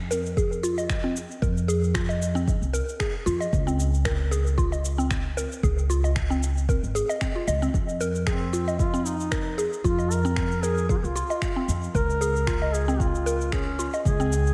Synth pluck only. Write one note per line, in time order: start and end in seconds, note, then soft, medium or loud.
0.11 0.36 A#4 medium
0.37 0.51 G#4 loud
0.63 0.76 F4 loud
0.78 0.89 D#5 medium
1.04 1.15 C4 medium
1.42 1.67 A#4 medium
1.68 1.82 G#4 loud
1.94 2.08 F4 medium
2.09 2.20 D#5 medium
2.35 2.47 C4 medium
2.73 2.99 A#4 loud
3.00 3.14 G#4 medium
3.26 3.39 F4 loud
3.40 3.52 D#5 medium
3.67 3.78 C4 medium
4.05 4.30 A#4 loud
4.31 4.45 G#4 loud
4.58 4.71 F4 loud
4.72 4.84 D#5 medium
4.98 5.10 C4 medium
5.37 5.62 A#4 loud
5.63 5.77 G#4 loud
5.90 6.03 F4 medium
6.04 6.15 D#5 medium
6.30 6.42 C4 loud
6.69 6.82 A#4 medium
6.95 7.08 G#4 loud
7.09 7.21 D#5 loud
7.21 7.35 C4 medium
7.36 7.46 F4 medium
7.48 7.56 D#5 medium
7.62 7.69 C4 loud
8.01 8.25 A#4 loud
8.27 8.40 G#4 loud
8.53 8.66 F4 medium
8.68 8.79 D#5 medium
8.94 9.05 C4 loud
9.32 9.57 A#4 medium
9.58 9.72 G#4 medium
9.84 9.97 F4 loud
9.99 10.10 D#5 medium
10.25 10.36 C4 loud
10.63 10.88 A#4 medium
10.89 11.03 G#4 medium
11.16 11.29 F4 medium
11.30 11.42 D#5 medium
11.56 11.68 C4 medium
11.95 12.20 A#4 loud
12.21 12.35 G#4 loud
12.47 12.60 F4 loud
12.62 12.73 D#5 medium
12.88 12.99 C4 medium
13.26 13.51 A#4 loud
13.53 13.66 G#4 medium
13.79 13.92 F4 medium
13.94 14.05 D#5 medium
14.20 14.31 C4 loud